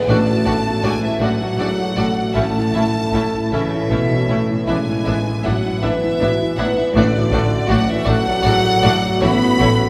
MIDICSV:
0, 0, Header, 1, 9, 480
1, 0, Start_track
1, 0, Tempo, 752823
1, 59, Time_signature, 6, 3, 24, 8
1, 1019, Tempo, 768246
1, 3899, Tempo, 754717
1, 6243, End_track
2, 0, Start_track
2, 0, Title_t, "Violin section"
2, 0, Program_c, 0, 48
2, 56, Note_on_c, 0, 81, 89
2, 536, Note_off_c, 0, 81, 0
2, 540, Note_on_c, 0, 80, 87
2, 658, Note_off_c, 0, 80, 0
2, 664, Note_on_c, 0, 76, 71
2, 777, Note_off_c, 0, 76, 0
2, 781, Note_on_c, 0, 78, 82
2, 1493, Note_on_c, 0, 81, 86
2, 1502, Note_off_c, 0, 78, 0
2, 2222, Note_off_c, 0, 81, 0
2, 2231, Note_on_c, 0, 76, 74
2, 2941, Note_on_c, 0, 80, 73
2, 2949, Note_off_c, 0, 76, 0
2, 3412, Note_off_c, 0, 80, 0
2, 3425, Note_on_c, 0, 78, 73
2, 3657, Note_on_c, 0, 76, 82
2, 3663, Note_off_c, 0, 78, 0
2, 4134, Note_on_c, 0, 78, 75
2, 4135, Note_off_c, 0, 76, 0
2, 4254, Note_off_c, 0, 78, 0
2, 4254, Note_on_c, 0, 76, 68
2, 4357, Note_on_c, 0, 74, 86
2, 4372, Note_off_c, 0, 76, 0
2, 4826, Note_off_c, 0, 74, 0
2, 4847, Note_on_c, 0, 78, 89
2, 4964, Note_off_c, 0, 78, 0
2, 4975, Note_on_c, 0, 76, 93
2, 5080, Note_on_c, 0, 78, 118
2, 5087, Note_off_c, 0, 76, 0
2, 5815, Note_off_c, 0, 78, 0
2, 5816, Note_on_c, 0, 83, 104
2, 6243, Note_off_c, 0, 83, 0
2, 6243, End_track
3, 0, Start_track
3, 0, Title_t, "Violin section"
3, 0, Program_c, 1, 48
3, 59, Note_on_c, 1, 74, 49
3, 60, Note_on_c, 1, 66, 47
3, 110, Note_off_c, 1, 74, 0
3, 111, Note_off_c, 1, 66, 0
3, 288, Note_on_c, 1, 74, 42
3, 291, Note_on_c, 1, 66, 46
3, 339, Note_off_c, 1, 74, 0
3, 342, Note_off_c, 1, 66, 0
3, 533, Note_on_c, 1, 66, 43
3, 533, Note_on_c, 1, 74, 45
3, 584, Note_off_c, 1, 66, 0
3, 584, Note_off_c, 1, 74, 0
3, 774, Note_on_c, 1, 66, 42
3, 778, Note_on_c, 1, 74, 40
3, 825, Note_off_c, 1, 66, 0
3, 829, Note_off_c, 1, 74, 0
3, 1019, Note_on_c, 1, 66, 37
3, 1019, Note_on_c, 1, 74, 43
3, 1069, Note_off_c, 1, 66, 0
3, 1069, Note_off_c, 1, 74, 0
3, 1249, Note_on_c, 1, 74, 45
3, 1251, Note_on_c, 1, 66, 44
3, 1299, Note_off_c, 1, 74, 0
3, 1301, Note_off_c, 1, 66, 0
3, 1488, Note_on_c, 1, 76, 39
3, 1492, Note_on_c, 1, 64, 50
3, 1538, Note_off_c, 1, 76, 0
3, 1542, Note_off_c, 1, 64, 0
3, 1733, Note_on_c, 1, 76, 38
3, 1735, Note_on_c, 1, 64, 38
3, 1783, Note_off_c, 1, 76, 0
3, 1785, Note_off_c, 1, 64, 0
3, 1978, Note_on_c, 1, 76, 39
3, 1982, Note_on_c, 1, 64, 43
3, 2028, Note_off_c, 1, 76, 0
3, 2032, Note_off_c, 1, 64, 0
3, 2223, Note_on_c, 1, 76, 39
3, 2226, Note_on_c, 1, 64, 35
3, 2273, Note_off_c, 1, 76, 0
3, 2276, Note_off_c, 1, 64, 0
3, 2462, Note_on_c, 1, 64, 37
3, 2462, Note_on_c, 1, 76, 39
3, 2512, Note_off_c, 1, 64, 0
3, 2512, Note_off_c, 1, 76, 0
3, 2697, Note_on_c, 1, 76, 39
3, 2700, Note_on_c, 1, 64, 45
3, 2747, Note_off_c, 1, 76, 0
3, 2750, Note_off_c, 1, 64, 0
3, 2940, Note_on_c, 1, 76, 47
3, 2941, Note_on_c, 1, 64, 44
3, 2990, Note_off_c, 1, 76, 0
3, 2991, Note_off_c, 1, 64, 0
3, 3177, Note_on_c, 1, 64, 41
3, 3178, Note_on_c, 1, 76, 43
3, 3227, Note_off_c, 1, 64, 0
3, 3228, Note_off_c, 1, 76, 0
3, 3413, Note_on_c, 1, 76, 44
3, 3416, Note_on_c, 1, 64, 41
3, 3463, Note_off_c, 1, 76, 0
3, 3466, Note_off_c, 1, 64, 0
3, 3657, Note_on_c, 1, 76, 42
3, 3661, Note_on_c, 1, 64, 44
3, 3707, Note_off_c, 1, 76, 0
3, 3711, Note_off_c, 1, 64, 0
3, 3902, Note_on_c, 1, 64, 45
3, 3902, Note_on_c, 1, 76, 45
3, 3952, Note_off_c, 1, 76, 0
3, 3953, Note_off_c, 1, 64, 0
3, 4138, Note_on_c, 1, 64, 54
3, 4138, Note_on_c, 1, 76, 49
3, 4188, Note_off_c, 1, 76, 0
3, 4189, Note_off_c, 1, 64, 0
3, 4382, Note_on_c, 1, 66, 55
3, 4383, Note_on_c, 1, 74, 57
3, 4433, Note_off_c, 1, 66, 0
3, 4434, Note_off_c, 1, 74, 0
3, 4608, Note_on_c, 1, 74, 51
3, 4613, Note_on_c, 1, 66, 49
3, 4659, Note_off_c, 1, 74, 0
3, 4664, Note_off_c, 1, 66, 0
3, 4839, Note_on_c, 1, 66, 61
3, 4843, Note_on_c, 1, 74, 55
3, 4890, Note_off_c, 1, 66, 0
3, 4894, Note_off_c, 1, 74, 0
3, 5070, Note_on_c, 1, 66, 56
3, 5070, Note_on_c, 1, 74, 49
3, 5120, Note_off_c, 1, 66, 0
3, 5121, Note_off_c, 1, 74, 0
3, 5315, Note_on_c, 1, 66, 57
3, 5315, Note_on_c, 1, 74, 47
3, 5366, Note_off_c, 1, 66, 0
3, 5366, Note_off_c, 1, 74, 0
3, 5565, Note_on_c, 1, 74, 59
3, 5569, Note_on_c, 1, 66, 55
3, 5616, Note_off_c, 1, 74, 0
3, 5619, Note_off_c, 1, 66, 0
3, 5812, Note_on_c, 1, 66, 65
3, 5812, Note_on_c, 1, 73, 64
3, 5863, Note_off_c, 1, 66, 0
3, 5863, Note_off_c, 1, 73, 0
3, 6053, Note_on_c, 1, 66, 51
3, 6055, Note_on_c, 1, 73, 50
3, 6104, Note_off_c, 1, 66, 0
3, 6106, Note_off_c, 1, 73, 0
3, 6243, End_track
4, 0, Start_track
4, 0, Title_t, "Harp"
4, 0, Program_c, 2, 46
4, 0, Note_on_c, 2, 59, 46
4, 0, Note_on_c, 2, 68, 43
4, 0, Note_on_c, 2, 71, 55
4, 0, Note_on_c, 2, 74, 51
4, 0, Note_on_c, 2, 76, 48
4, 53, Note_on_c, 2, 45, 62
4, 78, Note_off_c, 2, 71, 0
4, 80, Note_off_c, 2, 59, 0
4, 83, Note_off_c, 2, 68, 0
4, 83, Note_off_c, 2, 76, 0
4, 293, Note_on_c, 2, 57, 44
4, 535, Note_on_c, 2, 66, 43
4, 772, Note_on_c, 2, 69, 54
4, 1007, Note_off_c, 2, 74, 0
4, 1014, Note_on_c, 2, 74, 47
4, 1248, Note_off_c, 2, 69, 0
4, 1256, Note_on_c, 2, 69, 44
4, 1488, Note_off_c, 2, 45, 0
4, 1496, Note_on_c, 2, 45, 43
4, 1517, Note_off_c, 2, 74, 0
4, 1518, Note_off_c, 2, 66, 0
4, 1733, Note_off_c, 2, 57, 0
4, 1985, Note_on_c, 2, 64, 33
4, 2219, Note_off_c, 2, 69, 0
4, 2226, Note_on_c, 2, 69, 43
4, 2467, Note_on_c, 2, 73, 44
4, 2706, Note_off_c, 2, 69, 0
4, 2714, Note_on_c, 2, 69, 45
4, 2947, Note_off_c, 2, 45, 0
4, 2955, Note_on_c, 2, 45, 48
4, 2966, Note_off_c, 2, 73, 0
4, 2970, Note_off_c, 2, 69, 0
4, 3191, Note_on_c, 2, 59, 39
4, 3422, Note_off_c, 2, 64, 0
4, 3430, Note_on_c, 2, 64, 43
4, 3665, Note_on_c, 2, 71, 51
4, 3902, Note_on_c, 2, 74, 49
4, 4131, Note_off_c, 2, 71, 0
4, 4139, Note_on_c, 2, 71, 54
4, 4367, Note_off_c, 2, 45, 0
4, 4374, Note_on_c, 2, 45, 64
4, 4393, Note_off_c, 2, 71, 0
4, 4395, Note_off_c, 2, 59, 0
4, 4395, Note_off_c, 2, 64, 0
4, 4605, Note_on_c, 2, 57, 47
4, 4846, Note_on_c, 2, 66, 51
4, 5084, Note_on_c, 2, 69, 64
4, 5320, Note_off_c, 2, 74, 0
4, 5328, Note_on_c, 2, 74, 58
4, 5570, Note_off_c, 2, 69, 0
4, 5578, Note_on_c, 2, 69, 60
4, 5810, Note_off_c, 2, 45, 0
4, 5817, Note_on_c, 2, 45, 66
4, 5837, Note_off_c, 2, 74, 0
4, 6055, Note_off_c, 2, 57, 0
4, 6062, Note_on_c, 2, 57, 44
4, 6243, Note_off_c, 2, 45, 0
4, 6243, Note_off_c, 2, 57, 0
4, 6243, Note_off_c, 2, 66, 0
4, 6243, Note_off_c, 2, 69, 0
4, 6243, End_track
5, 0, Start_track
5, 0, Title_t, "Felt piano"
5, 0, Program_c, 3, 0
5, 0, Control_c, 3, 64, 127
5, 0, Note_on_c, 3, 59, 51
5, 0, Note_on_c, 3, 68, 43
5, 0, Note_on_c, 3, 69, 38
5, 0, Note_on_c, 3, 71, 52
5, 67, Note_on_c, 3, 33, 56
5, 71, Control_c, 3, 64, 0
5, 72, Note_off_c, 3, 71, 0
5, 73, Note_off_c, 3, 69, 0
5, 76, Note_off_c, 3, 68, 0
5, 78, Note_off_c, 3, 59, 0
5, 182, Note_on_c, 3, 66, 52
5, 186, Control_c, 3, 64, 127
5, 301, Note_on_c, 3, 69, 49
5, 372, Note_off_c, 3, 66, 0
5, 428, Note_on_c, 3, 66, 40
5, 491, Note_off_c, 3, 69, 0
5, 535, Note_on_c, 3, 57, 40
5, 614, Note_off_c, 3, 66, 0
5, 653, Note_on_c, 3, 66, 37
5, 727, Note_off_c, 3, 57, 0
5, 769, Note_on_c, 3, 69, 48
5, 847, Note_off_c, 3, 66, 0
5, 900, Note_on_c, 3, 66, 43
5, 966, Note_off_c, 3, 69, 0
5, 1026, Note_on_c, 3, 68, 35
5, 1091, Note_off_c, 3, 66, 0
5, 1142, Note_off_c, 3, 68, 0
5, 1142, Note_on_c, 3, 66, 42
5, 1262, Note_on_c, 3, 57, 40
5, 1332, Note_off_c, 3, 66, 0
5, 1381, Note_on_c, 3, 66, 36
5, 1453, Note_off_c, 3, 57, 0
5, 1479, Note_off_c, 3, 33, 0
5, 1501, Note_off_c, 3, 66, 0
5, 1505, Note_on_c, 3, 33, 43
5, 1513, Control_c, 3, 64, 0
5, 1619, Control_c, 3, 64, 127
5, 1629, Note_on_c, 3, 64, 42
5, 1754, Note_on_c, 3, 69, 39
5, 1819, Note_off_c, 3, 64, 0
5, 1942, Note_off_c, 3, 69, 0
5, 2002, Note_on_c, 3, 57, 35
5, 2117, Note_on_c, 3, 64, 37
5, 2187, Note_off_c, 3, 57, 0
5, 2233, Note_on_c, 3, 69, 43
5, 2304, Note_off_c, 3, 64, 0
5, 2356, Note_on_c, 3, 64, 40
5, 2421, Note_off_c, 3, 69, 0
5, 2479, Note_on_c, 3, 66, 32
5, 2543, Note_off_c, 3, 64, 0
5, 2591, Note_on_c, 3, 64, 35
5, 2592, Note_off_c, 3, 66, 0
5, 2714, Note_on_c, 3, 57, 42
5, 2781, Note_off_c, 3, 64, 0
5, 2831, Note_on_c, 3, 64, 36
5, 2902, Note_off_c, 3, 57, 0
5, 2924, Note_off_c, 3, 33, 0
5, 2949, Note_off_c, 3, 64, 0
5, 2958, Note_on_c, 3, 33, 47
5, 2960, Control_c, 3, 64, 0
5, 3063, Control_c, 3, 64, 127
5, 3076, Note_on_c, 3, 64, 42
5, 3184, Note_off_c, 3, 33, 0
5, 3191, Note_on_c, 3, 71, 41
5, 3262, Note_off_c, 3, 64, 0
5, 3308, Note_on_c, 3, 64, 40
5, 3380, Note_off_c, 3, 71, 0
5, 3435, Note_on_c, 3, 59, 41
5, 3498, Note_off_c, 3, 64, 0
5, 3548, Note_on_c, 3, 64, 36
5, 3620, Note_off_c, 3, 59, 0
5, 3677, Note_on_c, 3, 71, 50
5, 3736, Note_off_c, 3, 64, 0
5, 3791, Note_on_c, 3, 64, 46
5, 3860, Note_off_c, 3, 71, 0
5, 3908, Note_on_c, 3, 66, 36
5, 3976, Note_off_c, 3, 64, 0
5, 4023, Note_off_c, 3, 66, 0
5, 4029, Note_on_c, 3, 64, 47
5, 4143, Note_on_c, 3, 59, 49
5, 4214, Note_off_c, 3, 64, 0
5, 4260, Note_on_c, 3, 64, 49
5, 4329, Note_off_c, 3, 59, 0
5, 4375, Note_off_c, 3, 64, 0
5, 4378, Note_on_c, 3, 33, 57
5, 4386, Control_c, 3, 64, 0
5, 4477, Control_c, 3, 64, 127
5, 4497, Note_on_c, 3, 66, 51
5, 4611, Note_on_c, 3, 69, 55
5, 4682, Note_off_c, 3, 66, 0
5, 4725, Note_on_c, 3, 66, 43
5, 4798, Note_off_c, 3, 69, 0
5, 4848, Note_on_c, 3, 57, 55
5, 4914, Note_off_c, 3, 66, 0
5, 4972, Note_on_c, 3, 66, 48
5, 5036, Note_off_c, 3, 57, 0
5, 5090, Note_on_c, 3, 69, 62
5, 5158, Note_off_c, 3, 66, 0
5, 5217, Note_on_c, 3, 66, 57
5, 5279, Note_off_c, 3, 69, 0
5, 5334, Note_on_c, 3, 68, 49
5, 5406, Note_off_c, 3, 66, 0
5, 5451, Note_on_c, 3, 66, 56
5, 5452, Note_off_c, 3, 68, 0
5, 5582, Note_on_c, 3, 57, 54
5, 5647, Note_off_c, 3, 66, 0
5, 5711, Note_on_c, 3, 66, 46
5, 5773, Note_off_c, 3, 57, 0
5, 5793, Note_off_c, 3, 33, 0
5, 5824, Note_off_c, 3, 66, 0
5, 5826, Note_on_c, 3, 33, 54
5, 5828, Control_c, 3, 64, 0
5, 5938, Control_c, 3, 64, 127
5, 5940, Note_on_c, 3, 66, 56
5, 6058, Note_on_c, 3, 69, 57
5, 6132, Note_off_c, 3, 66, 0
5, 6176, Note_on_c, 3, 66, 45
5, 6243, Note_off_c, 3, 33, 0
5, 6243, Note_off_c, 3, 66, 0
5, 6243, Note_off_c, 3, 69, 0
5, 6243, End_track
6, 0, Start_track
6, 0, Title_t, "Viola section"
6, 0, Program_c, 4, 48
6, 56, Note_on_c, 4, 57, 55
6, 58, Note_on_c, 4, 62, 59
6, 107, Note_off_c, 4, 57, 0
6, 109, Note_off_c, 4, 62, 0
6, 295, Note_on_c, 4, 57, 52
6, 297, Note_on_c, 4, 62, 49
6, 346, Note_off_c, 4, 57, 0
6, 348, Note_off_c, 4, 62, 0
6, 534, Note_on_c, 4, 57, 51
6, 536, Note_on_c, 4, 62, 50
6, 585, Note_off_c, 4, 57, 0
6, 587, Note_off_c, 4, 62, 0
6, 765, Note_on_c, 4, 62, 49
6, 766, Note_on_c, 4, 57, 43
6, 816, Note_off_c, 4, 62, 0
6, 817, Note_off_c, 4, 57, 0
6, 1005, Note_on_c, 4, 57, 45
6, 1007, Note_on_c, 4, 62, 42
6, 1056, Note_off_c, 4, 57, 0
6, 1057, Note_off_c, 4, 62, 0
6, 1253, Note_on_c, 4, 62, 38
6, 1255, Note_on_c, 4, 57, 41
6, 1303, Note_off_c, 4, 62, 0
6, 1305, Note_off_c, 4, 57, 0
6, 1486, Note_on_c, 4, 61, 46
6, 1488, Note_on_c, 4, 57, 48
6, 1536, Note_off_c, 4, 61, 0
6, 1538, Note_off_c, 4, 57, 0
6, 1740, Note_on_c, 4, 57, 44
6, 1741, Note_on_c, 4, 61, 42
6, 1790, Note_off_c, 4, 57, 0
6, 1791, Note_off_c, 4, 61, 0
6, 1980, Note_on_c, 4, 61, 45
6, 1981, Note_on_c, 4, 57, 45
6, 2030, Note_off_c, 4, 61, 0
6, 2031, Note_off_c, 4, 57, 0
6, 2221, Note_on_c, 4, 57, 44
6, 2224, Note_on_c, 4, 61, 45
6, 2271, Note_off_c, 4, 57, 0
6, 2274, Note_off_c, 4, 61, 0
6, 2463, Note_on_c, 4, 61, 39
6, 2464, Note_on_c, 4, 57, 44
6, 2513, Note_off_c, 4, 61, 0
6, 2514, Note_off_c, 4, 57, 0
6, 2707, Note_on_c, 4, 57, 42
6, 2707, Note_on_c, 4, 61, 41
6, 2757, Note_off_c, 4, 57, 0
6, 2757, Note_off_c, 4, 61, 0
6, 2945, Note_on_c, 4, 62, 51
6, 2948, Note_on_c, 4, 59, 43
6, 2995, Note_off_c, 4, 62, 0
6, 2998, Note_off_c, 4, 59, 0
6, 3183, Note_on_c, 4, 62, 46
6, 3184, Note_on_c, 4, 59, 39
6, 3233, Note_off_c, 4, 62, 0
6, 3234, Note_off_c, 4, 59, 0
6, 3422, Note_on_c, 4, 59, 47
6, 3424, Note_on_c, 4, 62, 46
6, 3472, Note_off_c, 4, 59, 0
6, 3474, Note_off_c, 4, 62, 0
6, 3656, Note_on_c, 4, 59, 51
6, 3659, Note_on_c, 4, 62, 53
6, 3706, Note_off_c, 4, 59, 0
6, 3709, Note_off_c, 4, 62, 0
6, 3891, Note_on_c, 4, 62, 42
6, 3892, Note_on_c, 4, 59, 52
6, 3942, Note_off_c, 4, 62, 0
6, 3943, Note_off_c, 4, 59, 0
6, 4132, Note_on_c, 4, 59, 47
6, 4133, Note_on_c, 4, 62, 53
6, 4182, Note_off_c, 4, 59, 0
6, 4184, Note_off_c, 4, 62, 0
6, 4372, Note_on_c, 4, 62, 62
6, 4374, Note_on_c, 4, 57, 64
6, 4423, Note_off_c, 4, 62, 0
6, 4425, Note_off_c, 4, 57, 0
6, 4604, Note_on_c, 4, 62, 55
6, 4606, Note_on_c, 4, 57, 59
6, 4655, Note_off_c, 4, 62, 0
6, 4657, Note_off_c, 4, 57, 0
6, 4844, Note_on_c, 4, 62, 54
6, 4845, Note_on_c, 4, 57, 58
6, 4894, Note_off_c, 4, 62, 0
6, 4896, Note_off_c, 4, 57, 0
6, 5080, Note_on_c, 4, 57, 56
6, 5083, Note_on_c, 4, 62, 63
6, 5131, Note_off_c, 4, 57, 0
6, 5134, Note_off_c, 4, 62, 0
6, 5325, Note_on_c, 4, 62, 51
6, 5326, Note_on_c, 4, 57, 55
6, 5376, Note_off_c, 4, 62, 0
6, 5377, Note_off_c, 4, 57, 0
6, 5569, Note_on_c, 4, 57, 58
6, 5570, Note_on_c, 4, 62, 51
6, 5620, Note_off_c, 4, 57, 0
6, 5621, Note_off_c, 4, 62, 0
6, 5809, Note_on_c, 4, 57, 67
6, 5810, Note_on_c, 4, 64, 62
6, 5860, Note_off_c, 4, 57, 0
6, 5861, Note_off_c, 4, 64, 0
6, 6051, Note_on_c, 4, 57, 61
6, 6052, Note_on_c, 4, 64, 52
6, 6102, Note_off_c, 4, 57, 0
6, 6102, Note_off_c, 4, 64, 0
6, 6243, End_track
7, 0, Start_track
7, 0, Title_t, "French horn section"
7, 0, Program_c, 5, 60
7, 0, Note_on_c, 5, 50, 72
7, 47, Note_on_c, 5, 57, 70
7, 65, Note_off_c, 5, 50, 0
7, 521, Note_off_c, 5, 57, 0
7, 529, Note_on_c, 5, 56, 68
7, 652, Note_off_c, 5, 56, 0
7, 657, Note_on_c, 5, 52, 58
7, 757, Note_on_c, 5, 54, 69
7, 776, Note_off_c, 5, 52, 0
7, 1396, Note_off_c, 5, 54, 0
7, 1503, Note_on_c, 5, 57, 76
7, 2213, Note_off_c, 5, 57, 0
7, 2225, Note_on_c, 5, 52, 64
7, 2945, Note_on_c, 5, 56, 66
7, 2946, Note_off_c, 5, 52, 0
7, 3418, Note_on_c, 5, 54, 68
7, 3424, Note_off_c, 5, 56, 0
7, 3648, Note_on_c, 5, 52, 61
7, 3655, Note_off_c, 5, 54, 0
7, 4130, Note_off_c, 5, 52, 0
7, 4137, Note_on_c, 5, 54, 74
7, 4256, Note_off_c, 5, 54, 0
7, 4261, Note_on_c, 5, 52, 64
7, 4376, Note_off_c, 5, 52, 0
7, 4389, Note_on_c, 5, 50, 77
7, 4852, Note_off_c, 5, 50, 0
7, 4854, Note_on_c, 5, 54, 80
7, 4965, Note_on_c, 5, 52, 69
7, 4967, Note_off_c, 5, 54, 0
7, 5083, Note_off_c, 5, 52, 0
7, 5101, Note_on_c, 5, 54, 86
7, 5811, Note_on_c, 5, 59, 92
7, 5826, Note_off_c, 5, 54, 0
7, 6243, Note_off_c, 5, 59, 0
7, 6243, End_track
8, 0, Start_track
8, 0, Title_t, "Cello section"
8, 0, Program_c, 6, 48
8, 50, Note_on_c, 6, 45, 64
8, 101, Note_off_c, 6, 45, 0
8, 288, Note_on_c, 6, 45, 60
8, 339, Note_off_c, 6, 45, 0
8, 534, Note_on_c, 6, 45, 55
8, 585, Note_off_c, 6, 45, 0
8, 770, Note_on_c, 6, 45, 51
8, 821, Note_off_c, 6, 45, 0
8, 1015, Note_on_c, 6, 45, 53
8, 1065, Note_off_c, 6, 45, 0
8, 1256, Note_on_c, 6, 45, 48
8, 1306, Note_off_c, 6, 45, 0
8, 1490, Note_on_c, 6, 45, 52
8, 1540, Note_off_c, 6, 45, 0
8, 1739, Note_on_c, 6, 45, 58
8, 1789, Note_off_c, 6, 45, 0
8, 1973, Note_on_c, 6, 45, 55
8, 2023, Note_off_c, 6, 45, 0
8, 2217, Note_on_c, 6, 49, 50
8, 2444, Note_off_c, 6, 49, 0
8, 2456, Note_on_c, 6, 47, 57
8, 2699, Note_on_c, 6, 45, 46
8, 2701, Note_off_c, 6, 47, 0
8, 2936, Note_off_c, 6, 45, 0
8, 2944, Note_on_c, 6, 45, 53
8, 2994, Note_off_c, 6, 45, 0
8, 3183, Note_on_c, 6, 45, 62
8, 3233, Note_off_c, 6, 45, 0
8, 3422, Note_on_c, 6, 45, 57
8, 3472, Note_off_c, 6, 45, 0
8, 3663, Note_on_c, 6, 45, 42
8, 3713, Note_off_c, 6, 45, 0
8, 3898, Note_on_c, 6, 45, 57
8, 3949, Note_off_c, 6, 45, 0
8, 4134, Note_on_c, 6, 45, 55
8, 4185, Note_off_c, 6, 45, 0
8, 4365, Note_on_c, 6, 45, 78
8, 4416, Note_off_c, 6, 45, 0
8, 4608, Note_on_c, 6, 45, 70
8, 4658, Note_off_c, 6, 45, 0
8, 4848, Note_on_c, 6, 45, 67
8, 4899, Note_off_c, 6, 45, 0
8, 5087, Note_on_c, 6, 45, 62
8, 5138, Note_off_c, 6, 45, 0
8, 5324, Note_on_c, 6, 45, 64
8, 5375, Note_off_c, 6, 45, 0
8, 5575, Note_on_c, 6, 45, 64
8, 5626, Note_off_c, 6, 45, 0
8, 5820, Note_on_c, 6, 45, 80
8, 5871, Note_off_c, 6, 45, 0
8, 6055, Note_on_c, 6, 45, 69
8, 6106, Note_off_c, 6, 45, 0
8, 6243, End_track
9, 0, Start_track
9, 0, Title_t, "Double bass section"
9, 0, Program_c, 7, 48
9, 51, Note_on_c, 7, 33, 64
9, 102, Note_off_c, 7, 33, 0
9, 294, Note_on_c, 7, 33, 51
9, 345, Note_off_c, 7, 33, 0
9, 530, Note_on_c, 7, 33, 52
9, 581, Note_off_c, 7, 33, 0
9, 769, Note_on_c, 7, 33, 58
9, 820, Note_off_c, 7, 33, 0
9, 1010, Note_on_c, 7, 33, 45
9, 1060, Note_off_c, 7, 33, 0
9, 1251, Note_on_c, 7, 33, 51
9, 1301, Note_off_c, 7, 33, 0
9, 1490, Note_on_c, 7, 33, 53
9, 1540, Note_off_c, 7, 33, 0
9, 1729, Note_on_c, 7, 33, 49
9, 1779, Note_off_c, 7, 33, 0
9, 1976, Note_on_c, 7, 33, 51
9, 2026, Note_off_c, 7, 33, 0
9, 2223, Note_on_c, 7, 33, 47
9, 2273, Note_off_c, 7, 33, 0
9, 2459, Note_on_c, 7, 33, 41
9, 2509, Note_off_c, 7, 33, 0
9, 2700, Note_on_c, 7, 33, 46
9, 2750, Note_off_c, 7, 33, 0
9, 2945, Note_on_c, 7, 33, 51
9, 2995, Note_off_c, 7, 33, 0
9, 3188, Note_on_c, 7, 33, 48
9, 3238, Note_off_c, 7, 33, 0
9, 3430, Note_on_c, 7, 33, 51
9, 3480, Note_off_c, 7, 33, 0
9, 3669, Note_on_c, 7, 33, 58
9, 3719, Note_off_c, 7, 33, 0
9, 3903, Note_on_c, 7, 33, 53
9, 3954, Note_off_c, 7, 33, 0
9, 4137, Note_on_c, 7, 33, 62
9, 4188, Note_off_c, 7, 33, 0
9, 4375, Note_on_c, 7, 33, 66
9, 4426, Note_off_c, 7, 33, 0
9, 4606, Note_on_c, 7, 33, 67
9, 4657, Note_off_c, 7, 33, 0
9, 4846, Note_on_c, 7, 33, 67
9, 4897, Note_off_c, 7, 33, 0
9, 5081, Note_on_c, 7, 33, 78
9, 5132, Note_off_c, 7, 33, 0
9, 5322, Note_on_c, 7, 33, 71
9, 5373, Note_off_c, 7, 33, 0
9, 5570, Note_on_c, 7, 33, 62
9, 5620, Note_off_c, 7, 33, 0
9, 5811, Note_on_c, 7, 33, 62
9, 5862, Note_off_c, 7, 33, 0
9, 6057, Note_on_c, 7, 33, 68
9, 6108, Note_off_c, 7, 33, 0
9, 6243, End_track
0, 0, End_of_file